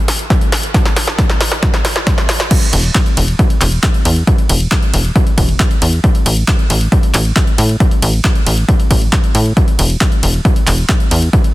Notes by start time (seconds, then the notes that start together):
0.08 snare, open hi-hat
0.19 closed hi-hat
0.30 kick, snare, closed hi-hat
0.41 closed hi-hat
0.52 snare, open hi-hat
0.63 closed hi-hat
0.74 kick, snare, closed hi-hat
0.85 snare, closed hi-hat
0.96 snare, open hi-hat
1.07 snare
1.19 kick, snare, closed hi-hat
1.30 snare, closed hi-hat
1.41 snare, open hi-hat
1.52 snare, closed hi-hat
1.63 kick, snare, closed hi-hat
1.74 snare, closed hi-hat
1.85 snare, open hi-hat
1.96 snare, closed hi-hat
2.07 kick, snare, closed hi-hat
2.18 snare, closed hi-hat
2.29 snare, open hi-hat
2.40 snare, closed hi-hat
2.51 kick, closed hi-hat, crash
2.62 closed hi-hat
2.73 E1, open hi-hat, ride
2.84 closed hi-hat
2.95 kick, clap, closed hi-hat
3.06 closed hi-hat
3.17 E1, open hi-hat, ride
3.28 closed hi-hat
3.39 kick, closed hi-hat
3.50 closed hi-hat
3.61 E1, clap, open hi-hat, ride
3.72 closed hi-hat
3.83 kick, clap, closed hi-hat
3.94 closed hi-hat
4.05 E2, open hi-hat, ride
4.16 closed hi-hat
4.27 kick, closed hi-hat
4.38 closed hi-hat
4.49 E1, open hi-hat, ride
4.60 closed hi-hat
4.71 kick, clap, closed hi-hat
4.83 closed hi-hat
4.94 E1, open hi-hat, ride
5.05 closed hi-hat
5.16 kick, closed hi-hat
5.27 closed hi-hat
5.38 E1, kick, open hi-hat, ride
5.49 closed hi-hat
5.60 kick, clap, closed hi-hat
5.71 closed hi-hat
5.82 E2, open hi-hat, ride
5.93 closed hi-hat
6.04 kick, closed hi-hat
6.15 closed hi-hat
6.26 A1, open hi-hat, ride
6.37 closed hi-hat
6.48 kick, clap, closed hi-hat
6.59 closed hi-hat
6.70 A1, open hi-hat, ride
6.81 closed hi-hat
6.92 kick, closed hi-hat
7.03 closed hi-hat
7.14 A1, clap, open hi-hat, ride
7.25 closed hi-hat
7.36 kick, clap, closed hi-hat
7.47 closed hi-hat
7.58 A2, open hi-hat, ride
7.69 closed hi-hat
7.80 kick, closed hi-hat
7.91 closed hi-hat
8.02 A1, open hi-hat, ride
8.13 closed hi-hat
8.24 kick, clap
8.35 closed hi-hat
8.46 A1, open hi-hat, ride
8.58 closed hi-hat
8.69 kick, closed hi-hat
8.80 closed hi-hat
8.91 A1, kick, open hi-hat, ride
9.02 closed hi-hat
9.13 kick, clap, closed hi-hat
9.24 closed hi-hat
9.35 A2, open hi-hat, ride
9.46 closed hi-hat
9.57 kick, closed hi-hat
9.68 closed hi-hat
9.79 E1, open hi-hat, ride
9.90 closed hi-hat
10.01 kick, clap, closed hi-hat
10.12 closed hi-hat
10.23 E1, open hi-hat, ride
10.34 closed hi-hat
10.45 kick, closed hi-hat
10.56 closed hi-hat
10.67 E1, clap, open hi-hat, ride
10.78 closed hi-hat
10.89 kick, clap, closed hi-hat
11.00 closed hi-hat
11.11 E2, open hi-hat, ride
11.22 closed hi-hat
11.33 kick, closed hi-hat
11.44 closed hi-hat